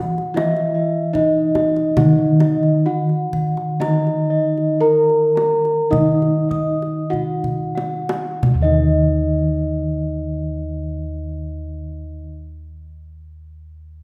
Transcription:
Already playing: bronze metallophone E3 F#4, kettle gongs E3
0.00 bronze metallophone F#5
0.18 kendang slap
0.34 bronze metallophone E3 E4 E5, kettle gongs E4 D#5, kendang high
0.57 kendang slap
0.74 kettle gongs D#5, bronze metallophone E5
1.13 bronze metallophone D#4 D#5, kettle gongs E4 D#5, kendang low
1.55 bronze metallophone D#5, kendang high, kendang low
1.76 kendang slap
1.97 bronze metallophone D#3 D#4 D#5, kettle gongs D#3 F#5, kendang high, kendang low
2.18 kendang slap
2.40 kettle gongs D#5, bronze metallophone D#5, kendang high
2.63 kendang slap
2.86 kettle gongs E4 F#5, bronze metallophone F#4 F#5
3.09 kendang slap
3.33 bronze metallophone F#5, kendang low
3.57 kendang slap
3.80 bronze metallophone D#3 D#4 D#5, kettle gongs D#4 A#5, kendang high
4.07 kendang slap
4.30 bronze metallophone D#5, kettle gongs D#5
4.58 kendang slap
4.81 kettle gongs E4 A#5, bronze metallophone A#4 A#5
5.10 kendang slap
5.36 bronze metallophone A#5, kendang high
5.65 kendang slap
5.90 kettle gongs D#3 F#5, bronze metallophone D#4 D#5 D#6, kendang low
6.22 kendang slap
6.49 kettle gongs D#5, bronze metallophone D#6, kendang low
6.82 kendang slap
7.10 kettle gongs E4 F#5, bronze metallophone F#4 F#5, kendang low
7.44 kendang low
7.75 bronze metallophone F#5, kendang high
8.09 kendang high
8.43 kendang low
8.54 kettle gongs D#2
8.61 bronze metallophone D#3 D#4 D#5, kettle gongs D#5

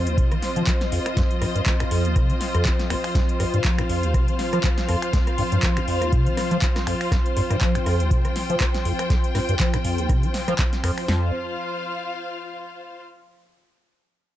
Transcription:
Already playing: analog synth pad F3 C4 C5, string section F4 C5 D#5
0.07 acid bass D#2, closed hi-hat
0.18 acid bass C3, kick, closed hi-hat
0.32 acid bass F3, cross-stick, closed hi-hat
0.42 snare, open hi-hat
0.56 acid bass F3, closed hi-hat
0.67 acid bass F3, kick, cross-stick, clap, closed hi-hat
0.81 snare, closed hi-hat
0.92 acid bass F2, open hi-hat
1.06 finger snap, cross-stick, closed hi-hat
1.17 acid bass F2, kick, snare, closed hi-hat
1.31 closed hi-hat
1.42 acid bass G2, cross-stick, open hi-hat
1.55 acid bass G2, closed hi-hat
1.66 acid bass F3, kick, clap, closed hi-hat
1.80 acid bass D#2, finger snap, cross-stick, closed hi-hat
1.91 acid bass F2, open hi-hat
2.05 acid bass D#2, closed hi-hat
2.16 acid bass C3, kick, cross-stick, closed hi-hat
2.30 acid bass F3, closed hi-hat
2.41 snare, open hi-hat
2.55 acid bass F2, cross-stick, closed hi-hat
2.65 acid bass D#2, kick, clap, closed hi-hat
2.79 snare, closed hi-hat
2.90 acid bass D#2, finger snap, cross-stick, open hi-hat
3.04 finger snap, open hi-hat
3.15 acid bass F2, analog synth pad C5, kick, snare, closed hi-hat
3.29 closed hi-hat
3.40 acid bass G2, cross-stick, open hi-hat
3.54 acid bass G2, string section F5, closed hi-hat
3.65 acid bass F3, kick, clap, closed hi-hat
3.79 acid bass D#2, finger snap, cross-stick, closed hi-hat
3.89 acid bass F2, open hi-hat
4.03 acid bass D#2, closed hi-hat
4.14 acid bass C3, kick, cross-stick, closed hi-hat
4.28 acid bass F3, closed hi-hat
4.39 snare, open hi-hat
4.53 acid bass F3, cross-stick, closed hi-hat
4.64 acid bass F3, kick, clap, closed hi-hat
4.78 snare, closed hi-hat
4.89 acid bass F2, cross-stick, open hi-hat
5.02 finger snap, closed hi-hat
5.13 acid bass F2, kick, snare, closed hi-hat
5.27 cross-stick, closed hi-hat
5.38 acid bass G2, open hi-hat
5.52 acid bass G2, closed hi-hat
5.63 acid bass F3, kick, cross-stick, clap, closed hi-hat
5.77 acid bass D#2, finger snap, closed hi-hat
5.88 acid bass F2, open hi-hat
6.02 acid bass D#2, cross-stick, closed hi-hat
6.13 acid bass C3, kick, closed hi-hat
6.26 acid bass F3, closed hi-hat
6.37 cross-stick, snare, open hi-hat
6.51 acid bass F3, closed hi-hat
6.62 acid bass F3, kick, clap, closed hi-hat
6.76 cross-stick, snare, closed hi-hat
6.87 acid bass F2, finger snap, open hi-hat
7.01 finger snap, open hi-hat
7.12 acid bass F2, kick, cross-stick, snare, closed hi-hat
7.26 closed hi-hat
7.37 acid bass G2, open hi-hat
7.50 acid bass G2, string section G5, cross-stick, closed hi-hat
7.61 acid bass F3, kick, clap, closed hi-hat
7.75 acid bass D#2, finger snap, closed hi-hat
7.86 acid bass F2, cross-stick, open hi-hat
8.00 acid bass D#2, closed hi-hat
8.11 acid bass C3, kick, closed hi-hat
8.25 acid bass F3, cross-stick, closed hi-hat
8.36 snare, open hi-hat
8.50 acid bass F3, closed hi-hat
8.60 acid bass F3, kick, cross-stick, clap, closed hi-hat
8.74 snare, closed hi-hat
8.85 acid bass F2, open hi-hat
8.99 finger snap, cross-stick, closed hi-hat
9.10 acid bass F2, kick, snare, closed hi-hat
9.24 closed hi-hat
9.35 acid bass G2, cross-stick, snare, open hi-hat
9.49 acid bass G2, closed hi-hat
9.60 acid bass F3, kick, clap, closed hi-hat
9.74 acid bass D#2, finger snap, cross-stick, closed hi-hat
9.85 acid bass F2, open hi-hat
9.98 acid bass D#2, closed hi-hat
10.09 acid bass C3, kick, cross-stick, closed hi-hat
10.23 acid bass F3, closed hi-hat
10.34 snare, open hi-hat
10.48 acid bass F3, cross-stick, closed hi-hat
10.59 acid bass F3, kick, clap, closed hi-hat
10.73 snare, closed hi-hat
10.84 acid bass F2, finger snap, cross-stick, open hi-hat
10.98 finger snap, open hi-hat
11.08 acid bass F2, analog synth pad F3 C4 C5, string section F4, snare
11.17 string section C5
11.25 string section F5

